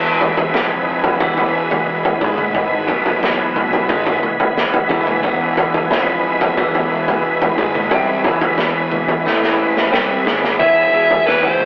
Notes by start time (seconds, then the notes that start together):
Already playing: E1 E2 E3 G#3 B3 E4 B4
0.21 floor tom
0.37 floor tom
0.54 F1 F2, snare, floor tom
1.04 floor tom
1.20 E1 E2, kick, floor tom
1.38 floor tom
1.71 floor tom, mid tom
2.05 floor tom
2.21 G#1 G#2, kick, floor tom
2.38 mid tom
2.55 kick, floor tom
2.87 B1 B2, kick, floor tom
3.06 floor tom
3.23 snare, floor tom
3.56 mid tom
3.73 floor tom
3.89 G#1 G#2, kick, floor tom
4.07 floor tom
4.22 muted clean electric guitar stroke, muted picked electric bass stroke, mid tom
4.40 floor tom, mid tom
4.58 snare
4.74 floor tom
4.89 E1 E2, kick, floor tom
5.07 mid tom
5.23 E1 E2, kick, floor tom
5.57 floor tom
5.74 floor tom
5.90 F1 F2, snare, floor tom
6.41 floor tom
6.57 E1 E2, kick, floor tom
6.75 floor tom
7.08 floor tom, mid tom
7.42 floor tom
7.58 G#1 G#2, kick, floor tom
7.75 mid tom
7.91 C2 C3, kick, floor tom
8.24 E1 E2, floor tom
8.41 floor tom
8.58 snare, floor tom
8.91 mid tom
9.08 floor tom
9.26 A1 A2, snare
9.43 snare
9.77 snare
9.92 C2 C3, snare
10.26 G#1 G#2, snare
10.44 snare
10.59 E1 E3 B3 E4 G#4 E5 B5, kick, floor tom
10.92 E3 B3 E4 G#4
11.11 floor tom
11.26 E3 B3 E4 G#4 B4, kick, snare
11.43 B3 E4 G#4 C5, floor tom
11.60 muted clean electric guitar stroke, mid tom